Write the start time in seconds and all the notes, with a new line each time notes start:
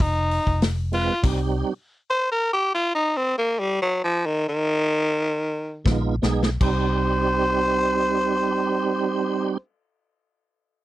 0.00 F1 D#4, kick, open hi-hat
0.31 open hi-hat
0.47 F1, kick
0.62 snare, open hi-hat
0.92 G#3 C4 F4 B4, open hi-hat
1.23 C2 G3 C4 D#4 G4, kick, open hi-hat, crash
2.10 C5
2.32 A#4
2.53 G4
2.74 F4
2.95 D#4
3.17 C4
3.38 A#3
3.59 G3
3.82 F#3
4.04 F3
4.26 D#3
4.49 D#3
5.85 A#1 G#3 B3 D#4 F4, kick, snare, high tom
6.22 B1 G#3 B3 D#4 G#4, snare
6.43 snare
6.61 C2 G3 C4 D#4 G4 C5, kick, crash